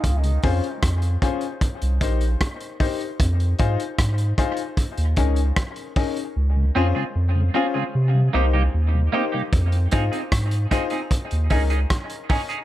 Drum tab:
HH |xxoxxxxxxxxxxxox|xxxxxxxxxxxxxxox|----------------|xxxxxxxxxxoxxxox|
SD |----r-------r---|----r-r-----r---|----------------|----r-r-----r---|
BD |o-o-o-o-o-o-o-o-|o-o-o-o-o-o-o-o-|----------------|o-o-o-o-o-o-o-o-|